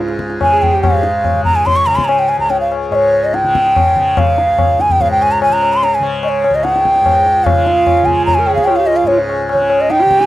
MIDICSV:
0, 0, Header, 1, 5, 480
1, 0, Start_track
1, 0, Tempo, 418118
1, 948, Time_signature, 4, 2, 24, 8
1, 5739, Tempo, 408719
1, 11919, End_track
2, 0, Start_track
2, 0, Title_t, "Bansuri"
2, 0, Program_c, 0, 73
2, 489, Note_on_c, 0, 80, 108
2, 712, Note_on_c, 0, 79, 94
2, 729, Note_off_c, 0, 80, 0
2, 938, Note_off_c, 0, 79, 0
2, 944, Note_on_c, 0, 77, 86
2, 1625, Note_off_c, 0, 77, 0
2, 1660, Note_on_c, 0, 82, 101
2, 1786, Note_on_c, 0, 80, 87
2, 1803, Note_off_c, 0, 82, 0
2, 1906, Note_on_c, 0, 84, 104
2, 1923, Note_off_c, 0, 80, 0
2, 2021, Note_on_c, 0, 85, 89
2, 2038, Note_off_c, 0, 84, 0
2, 2139, Note_on_c, 0, 82, 103
2, 2156, Note_off_c, 0, 85, 0
2, 2247, Note_on_c, 0, 84, 94
2, 2264, Note_off_c, 0, 82, 0
2, 2349, Note_on_c, 0, 82, 69
2, 2366, Note_off_c, 0, 84, 0
2, 2390, Note_on_c, 0, 80, 97
2, 2407, Note_off_c, 0, 82, 0
2, 2513, Note_on_c, 0, 79, 89
2, 2530, Note_off_c, 0, 80, 0
2, 2626, Note_on_c, 0, 80, 87
2, 2643, Note_off_c, 0, 79, 0
2, 2751, Note_off_c, 0, 80, 0
2, 2755, Note_on_c, 0, 82, 87
2, 2871, Note_on_c, 0, 79, 87
2, 2889, Note_off_c, 0, 82, 0
2, 2985, Note_off_c, 0, 79, 0
2, 2992, Note_on_c, 0, 77, 69
2, 3105, Note_off_c, 0, 77, 0
2, 3347, Note_on_c, 0, 75, 74
2, 3385, Note_on_c, 0, 73, 81
2, 3397, Note_off_c, 0, 75, 0
2, 3725, Note_on_c, 0, 75, 79
2, 3742, Note_off_c, 0, 73, 0
2, 3838, Note_on_c, 0, 79, 107
2, 3855, Note_off_c, 0, 75, 0
2, 4802, Note_on_c, 0, 77, 105
2, 4820, Note_off_c, 0, 79, 0
2, 5521, Note_on_c, 0, 80, 102
2, 5538, Note_off_c, 0, 77, 0
2, 5643, Note_on_c, 0, 79, 93
2, 5660, Note_off_c, 0, 80, 0
2, 5755, Note_on_c, 0, 77, 99
2, 5772, Note_off_c, 0, 79, 0
2, 5869, Note_off_c, 0, 77, 0
2, 5874, Note_on_c, 0, 79, 100
2, 6002, Note_on_c, 0, 80, 109
2, 6019, Note_off_c, 0, 79, 0
2, 6112, Note_on_c, 0, 82, 99
2, 6129, Note_off_c, 0, 80, 0
2, 6229, Note_off_c, 0, 82, 0
2, 6245, Note_on_c, 0, 80, 107
2, 6360, Note_on_c, 0, 82, 104
2, 6378, Note_off_c, 0, 80, 0
2, 6601, Note_on_c, 0, 84, 106
2, 6619, Note_off_c, 0, 82, 0
2, 6723, Note_on_c, 0, 82, 104
2, 6741, Note_off_c, 0, 84, 0
2, 6852, Note_on_c, 0, 80, 84
2, 6869, Note_off_c, 0, 82, 0
2, 6962, Note_off_c, 0, 80, 0
2, 7197, Note_on_c, 0, 75, 76
2, 7250, Note_on_c, 0, 73, 83
2, 7262, Note_off_c, 0, 75, 0
2, 7558, Note_on_c, 0, 75, 84
2, 7576, Note_off_c, 0, 73, 0
2, 7665, Note_on_c, 0, 79, 99
2, 7682, Note_off_c, 0, 75, 0
2, 8609, Note_on_c, 0, 77, 104
2, 8627, Note_off_c, 0, 79, 0
2, 9326, Note_on_c, 0, 80, 76
2, 9341, Note_off_c, 0, 77, 0
2, 9446, Note_off_c, 0, 80, 0
2, 9446, Note_on_c, 0, 80, 102
2, 9559, Note_off_c, 0, 80, 0
2, 9566, Note_on_c, 0, 82, 112
2, 9668, Note_on_c, 0, 80, 94
2, 9686, Note_off_c, 0, 82, 0
2, 9807, Note_on_c, 0, 79, 102
2, 9825, Note_off_c, 0, 80, 0
2, 9900, Note_off_c, 0, 79, 0
2, 9907, Note_on_c, 0, 77, 93
2, 10022, Note_on_c, 0, 79, 99
2, 10040, Note_off_c, 0, 77, 0
2, 10155, Note_on_c, 0, 77, 94
2, 10172, Note_off_c, 0, 79, 0
2, 10278, Note_on_c, 0, 75, 87
2, 10296, Note_off_c, 0, 77, 0
2, 10395, Note_on_c, 0, 77, 90
2, 10412, Note_off_c, 0, 75, 0
2, 10522, Note_on_c, 0, 73, 80
2, 10539, Note_off_c, 0, 77, 0
2, 10656, Note_off_c, 0, 73, 0
2, 11047, Note_on_c, 0, 73, 93
2, 11388, Note_on_c, 0, 75, 102
2, 11405, Note_off_c, 0, 73, 0
2, 11515, Note_on_c, 0, 79, 123
2, 11533, Note_off_c, 0, 75, 0
2, 11919, Note_off_c, 0, 79, 0
2, 11919, End_track
3, 0, Start_track
3, 0, Title_t, "Sarangi"
3, 0, Program_c, 1, 110
3, 580, Note_on_c, 1, 68, 66
3, 841, Note_on_c, 1, 67, 64
3, 859, Note_off_c, 1, 68, 0
3, 1076, Note_off_c, 1, 67, 0
3, 8741, Note_on_c, 1, 65, 67
3, 9714, Note_on_c, 1, 70, 74
3, 9732, Note_off_c, 1, 65, 0
3, 9827, Note_on_c, 1, 68, 78
3, 9845, Note_off_c, 1, 70, 0
3, 10079, Note_on_c, 1, 65, 70
3, 10097, Note_off_c, 1, 68, 0
3, 10189, Note_on_c, 1, 67, 64
3, 10207, Note_off_c, 1, 65, 0
3, 10299, Note_on_c, 1, 65, 65
3, 10316, Note_off_c, 1, 67, 0
3, 10544, Note_off_c, 1, 65, 0
3, 10552, Note_on_c, 1, 65, 64
3, 10653, Note_on_c, 1, 61, 49
3, 10671, Note_off_c, 1, 65, 0
3, 10781, Note_off_c, 1, 61, 0
3, 11138, Note_on_c, 1, 61, 64
3, 11501, Note_on_c, 1, 63, 75
3, 11518, Note_off_c, 1, 61, 0
3, 11617, Note_on_c, 1, 67, 88
3, 11634, Note_off_c, 1, 63, 0
3, 11919, Note_off_c, 1, 67, 0
3, 11919, End_track
4, 0, Start_track
4, 0, Title_t, "Tanpura"
4, 0, Program_c, 2, 104
4, 0, Note_on_c, 2, 37, 62
4, 0, Note_on_c, 2, 44, 62
4, 0, Note_on_c, 2, 49, 60
4, 452, Note_off_c, 2, 49, 0
4, 452, Note_on_c, 2, 49, 62
4, 953, Note_off_c, 2, 44, 0
4, 953, Note_on_c, 2, 44, 64
4, 1532, Note_off_c, 2, 49, 0
4, 1532, Note_on_c, 2, 49, 59
4, 2133, Note_off_c, 2, 49, 0
4, 2133, Note_on_c, 2, 49, 63
4, 2723, Note_off_c, 2, 37, 0
4, 2727, Note_on_c, 2, 37, 67
4, 3332, Note_off_c, 2, 44, 0
4, 3332, Note_on_c, 2, 44, 62
4, 3940, Note_off_c, 2, 49, 0
4, 3940, Note_on_c, 2, 49, 66
4, 4532, Note_off_c, 2, 49, 0
4, 4532, Note_on_c, 2, 49, 62
4, 5111, Note_off_c, 2, 37, 0
4, 5116, Note_on_c, 2, 37, 65
4, 5706, Note_off_c, 2, 44, 0
4, 5711, Note_on_c, 2, 44, 70
4, 6308, Note_off_c, 2, 49, 0
4, 6308, Note_on_c, 2, 49, 69
4, 6908, Note_off_c, 2, 49, 0
4, 6908, Note_on_c, 2, 49, 71
4, 7491, Note_off_c, 2, 37, 0
4, 7496, Note_on_c, 2, 37, 69
4, 8098, Note_off_c, 2, 44, 0
4, 8102, Note_on_c, 2, 44, 61
4, 8699, Note_off_c, 2, 49, 0
4, 8699, Note_on_c, 2, 49, 69
4, 9290, Note_off_c, 2, 49, 0
4, 9290, Note_on_c, 2, 49, 65
4, 9878, Note_off_c, 2, 37, 0
4, 9883, Note_on_c, 2, 37, 65
4, 10473, Note_off_c, 2, 44, 0
4, 10477, Note_on_c, 2, 44, 68
4, 11070, Note_off_c, 2, 49, 0
4, 11070, Note_on_c, 2, 49, 61
4, 11673, Note_off_c, 2, 49, 0
4, 11673, Note_on_c, 2, 49, 65
4, 11919, Note_off_c, 2, 37, 0
4, 11919, Note_off_c, 2, 44, 0
4, 11919, Note_off_c, 2, 49, 0
4, 11919, End_track
5, 0, Start_track
5, 0, Title_t, "Tabla"
5, 97, Note_on_c, 9, 62, 64
5, 211, Note_off_c, 9, 62, 0
5, 219, Note_on_c, 9, 37, 60
5, 334, Note_off_c, 9, 37, 0
5, 345, Note_on_c, 9, 62, 62
5, 460, Note_off_c, 9, 62, 0
5, 468, Note_on_c, 9, 60, 71
5, 468, Note_on_c, 9, 64, 69
5, 583, Note_off_c, 9, 60, 0
5, 583, Note_off_c, 9, 64, 0
5, 722, Note_on_c, 9, 64, 53
5, 837, Note_off_c, 9, 64, 0
5, 959, Note_on_c, 9, 60, 108
5, 959, Note_on_c, 9, 64, 92
5, 1074, Note_off_c, 9, 60, 0
5, 1074, Note_off_c, 9, 64, 0
5, 1185, Note_on_c, 9, 62, 94
5, 1300, Note_off_c, 9, 62, 0
5, 1428, Note_on_c, 9, 60, 73
5, 1428, Note_on_c, 9, 64, 72
5, 1543, Note_off_c, 9, 60, 0
5, 1543, Note_off_c, 9, 64, 0
5, 1665, Note_on_c, 9, 64, 57
5, 1780, Note_off_c, 9, 64, 0
5, 1915, Note_on_c, 9, 63, 88
5, 1915, Note_on_c, 9, 64, 76
5, 2030, Note_off_c, 9, 63, 0
5, 2030, Note_off_c, 9, 64, 0
5, 2161, Note_on_c, 9, 60, 66
5, 2276, Note_off_c, 9, 60, 0
5, 2278, Note_on_c, 9, 37, 66
5, 2393, Note_off_c, 9, 37, 0
5, 2399, Note_on_c, 9, 60, 82
5, 2514, Note_off_c, 9, 60, 0
5, 2634, Note_on_c, 9, 60, 59
5, 2749, Note_off_c, 9, 60, 0
5, 2872, Note_on_c, 9, 63, 83
5, 2987, Note_off_c, 9, 63, 0
5, 3119, Note_on_c, 9, 60, 69
5, 3233, Note_off_c, 9, 60, 0
5, 3355, Note_on_c, 9, 60, 80
5, 3469, Note_off_c, 9, 60, 0
5, 3595, Note_on_c, 9, 60, 61
5, 3710, Note_off_c, 9, 60, 0
5, 3834, Note_on_c, 9, 62, 86
5, 3949, Note_off_c, 9, 62, 0
5, 3953, Note_on_c, 9, 62, 63
5, 4068, Note_off_c, 9, 62, 0
5, 4077, Note_on_c, 9, 37, 65
5, 4192, Note_off_c, 9, 37, 0
5, 4200, Note_on_c, 9, 62, 65
5, 4314, Note_off_c, 9, 62, 0
5, 4320, Note_on_c, 9, 60, 80
5, 4320, Note_on_c, 9, 64, 72
5, 4435, Note_off_c, 9, 60, 0
5, 4435, Note_off_c, 9, 64, 0
5, 4553, Note_on_c, 9, 64, 53
5, 4668, Note_off_c, 9, 64, 0
5, 4789, Note_on_c, 9, 60, 106
5, 4789, Note_on_c, 9, 64, 97
5, 4904, Note_off_c, 9, 60, 0
5, 4904, Note_off_c, 9, 64, 0
5, 5028, Note_on_c, 9, 62, 93
5, 5143, Note_off_c, 9, 62, 0
5, 5263, Note_on_c, 9, 60, 80
5, 5263, Note_on_c, 9, 64, 73
5, 5378, Note_off_c, 9, 60, 0
5, 5378, Note_off_c, 9, 64, 0
5, 5505, Note_on_c, 9, 62, 67
5, 5620, Note_off_c, 9, 62, 0
5, 5621, Note_on_c, 9, 64, 56
5, 5736, Note_off_c, 9, 64, 0
5, 5746, Note_on_c, 9, 63, 87
5, 5746, Note_on_c, 9, 64, 78
5, 5863, Note_off_c, 9, 63, 0
5, 5863, Note_off_c, 9, 64, 0
5, 5991, Note_on_c, 9, 60, 63
5, 6109, Note_off_c, 9, 60, 0
5, 6231, Note_on_c, 9, 60, 81
5, 6348, Note_off_c, 9, 60, 0
5, 6477, Note_on_c, 9, 60, 56
5, 6594, Note_off_c, 9, 60, 0
5, 6713, Note_on_c, 9, 63, 77
5, 6831, Note_off_c, 9, 63, 0
5, 6950, Note_on_c, 9, 60, 67
5, 7067, Note_off_c, 9, 60, 0
5, 7187, Note_on_c, 9, 60, 82
5, 7304, Note_off_c, 9, 60, 0
5, 7435, Note_on_c, 9, 60, 65
5, 7552, Note_off_c, 9, 60, 0
5, 7674, Note_on_c, 9, 62, 86
5, 7792, Note_off_c, 9, 62, 0
5, 7802, Note_on_c, 9, 62, 70
5, 7916, Note_on_c, 9, 37, 64
5, 7919, Note_off_c, 9, 62, 0
5, 8033, Note_off_c, 9, 37, 0
5, 8038, Note_on_c, 9, 62, 70
5, 8155, Note_off_c, 9, 62, 0
5, 8155, Note_on_c, 9, 60, 76
5, 8155, Note_on_c, 9, 64, 69
5, 8272, Note_off_c, 9, 60, 0
5, 8272, Note_off_c, 9, 64, 0
5, 8395, Note_on_c, 9, 62, 63
5, 8512, Note_off_c, 9, 62, 0
5, 8633, Note_on_c, 9, 60, 105
5, 8633, Note_on_c, 9, 64, 98
5, 8751, Note_off_c, 9, 60, 0
5, 8751, Note_off_c, 9, 64, 0
5, 8868, Note_on_c, 9, 62, 92
5, 8985, Note_off_c, 9, 62, 0
5, 9107, Note_on_c, 9, 60, 83
5, 9107, Note_on_c, 9, 64, 76
5, 9224, Note_off_c, 9, 60, 0
5, 9224, Note_off_c, 9, 64, 0
5, 9345, Note_on_c, 9, 64, 54
5, 9462, Note_off_c, 9, 64, 0
5, 9587, Note_on_c, 9, 63, 90
5, 9587, Note_on_c, 9, 64, 80
5, 9704, Note_off_c, 9, 63, 0
5, 9704, Note_off_c, 9, 64, 0
5, 9818, Note_on_c, 9, 60, 65
5, 9935, Note_off_c, 9, 60, 0
5, 9940, Note_on_c, 9, 37, 65
5, 10055, Note_on_c, 9, 60, 81
5, 10057, Note_off_c, 9, 37, 0
5, 10172, Note_off_c, 9, 60, 0
5, 10304, Note_on_c, 9, 60, 61
5, 10421, Note_off_c, 9, 60, 0
5, 10536, Note_on_c, 9, 63, 82
5, 10653, Note_off_c, 9, 63, 0
5, 10783, Note_on_c, 9, 60, 68
5, 10900, Note_off_c, 9, 60, 0
5, 11017, Note_on_c, 9, 60, 81
5, 11134, Note_off_c, 9, 60, 0
5, 11257, Note_on_c, 9, 60, 66
5, 11375, Note_off_c, 9, 60, 0
5, 11494, Note_on_c, 9, 62, 90
5, 11612, Note_off_c, 9, 62, 0
5, 11614, Note_on_c, 9, 62, 69
5, 11731, Note_off_c, 9, 62, 0
5, 11738, Note_on_c, 9, 37, 65
5, 11853, Note_on_c, 9, 62, 71
5, 11855, Note_off_c, 9, 37, 0
5, 11919, Note_off_c, 9, 62, 0
5, 11919, End_track
0, 0, End_of_file